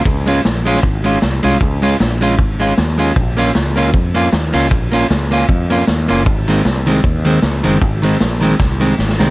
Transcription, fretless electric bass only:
X:1
M:4/4
L:1/8
Q:"Swing" 1/4=155
K:Db
V:1 name="Fretless electric bass" clef=bass
D,,2 B,,,2 A,,,2 C,, C,, | D,,2 B,,,2 A,,,2 E,,2 | B,,,2 D,,2 F,,2 E,, D,, | B,,,2 D,,2 F,,2 E,, G,,, |
A,,,2 C,,2 E,,2 D,, G,,, | A,,,2 B,,,2 C,,2 A,,, C,, |]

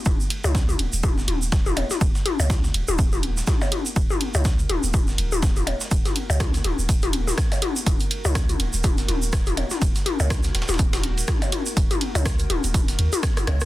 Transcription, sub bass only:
X:1
M:4/4
L:1/16
Q:"Swing 16ths" 1/4=123
K:Ebm
V:1 name="Sub bass" clef=bass
E,,, z2 D,,2 z E,,, E,,,2 z E,,,4 z2 | E,,, z2 D,,2 z E,,, E,,,4 z4 z | E,,, z2 D,,2 z E,,, E,,,2 z E,,,4 z2 | E,,, z2 D,,2 z E,,, E,,,4 z4 z |
E,,, z2 D,,2 z E,,, E,,,2 z E,,,4 z2 | E,,, z2 D,,2 z E,,, E,,,4 z4 z | E,,, z2 D,,2 z E,,, E,,,2 z E,, z3 D,, z |]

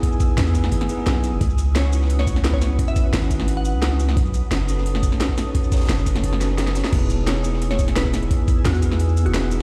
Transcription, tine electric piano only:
X:1
M:4/4
L:1/16
Q:1/4=174
K:E
V:1 name="Tine electric piano"
[B,DEGB]6 [B,DEGB]4 [B,DEGB] [B,DEGB]4- [B,DEGB] | z6 [CDEFB]6 [B,CEFB]4- | [B,CEFB]6 [CDEFB]6 [CDEFB]4 | z6 [CDFAB]6 [CDFAB]4- |
[CDFAB]6 [CDFAB]4 [CDFAB] [CDFAB]4- [CDFAB] | [B,DEGB]6 [B,DEGB]6 [B,DEGB]4- | [B,DEGB]6 [B,DEGB]6 [B,DEGB]4 |]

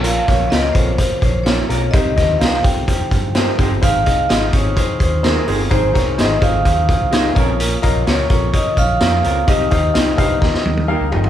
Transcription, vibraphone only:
X:1
M:4/4
L:1/16
Q:1/4=127
K:Ab
V:1 name="Vibraphone"
f4 e2 c4 c2 d2 d2 | e4 f2 g8 z2 | f4 e2 d2 c2 c2 B4 | c3/2 c/2 d2 e2 f8 z2 |
z4 d2 d2 e2 f6 | e12 z4 |]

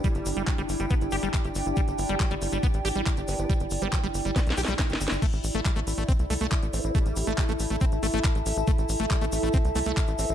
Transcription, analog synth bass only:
X:1
M:4/4
L:1/16
Q:1/4=139
K:Gdor
V:1 name="Analog synth bass" clef=bass
z G,,, G,,, G,,, z G,,, G,,, G,,, z G,,, G,,, G,,, z G,,, G,,, G,,, | z G,,, G,,, G,,, z G,,, G,,, G,,, z A,,, A,,, A,,, z G,,, G,,, G,,, | z G,,, G,,, G,,, z G,,, G,,, G,,, z =B,,, B,,, B,,, z G,,, G,,, G,,, | z A,,, A,,, A,,, z A,,, A,,, A,,, z C,, C,, C,, z A,,, A,,, A,,, |
z A,,, A,,, A,,, z A,,, A,,, A,,, z A,,, A,,, A,,, z A,,, A,,, A,,, | z A,,, A,,, A,,, z A,,, A,,, A,,, z C,, C,, C,, z A,,, A,,, A,,, |]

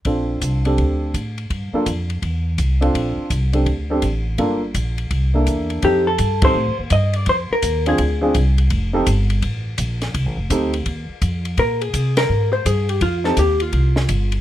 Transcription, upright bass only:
X:1
M:4/4
L:1/8
Q:"Swing" 1/4=167
K:Fmix
V:1 name="Upright bass" clef=bass
B,,,2 C,,2 D,,2 A,,2 | G,, z F,,2 =E,,2 C,,2 | B,,, z C,,2 D,,2 A,,,2 | G,,,2 B,,,2 C,,2 =E,,2 |
F,,2 G,,2 (3A,, F,, E,, G,,2 | F,, z E,,2 D,,2 C,,2 | F,,,2 G,,,2 A,,,2 B,,,2 | (3C,, A,,, F,,, D,,2 E,, z F,,2 |
B,,2 C,2 _A,,2 G,,2 | F,,2 E,,2 C,,2 G,,,2 |]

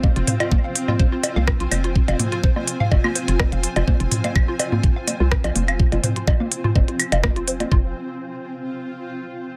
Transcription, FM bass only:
X:1
M:4/4
L:1/16
Q:"Swing 16ths" 1/4=125
K:Fm
V:1 name="FM bass" clef=bass
z F,,, z8 z C,, z B,,, F,,,2 | z F,,, z6 F,,, z2 F,,,2 F,,, z F,,, | z F,,, z8 z C,, z B,,, F,,,2 | z F,,, z6 F,,, z2 F,,,4 z |
F,,,2 z12 z2 |]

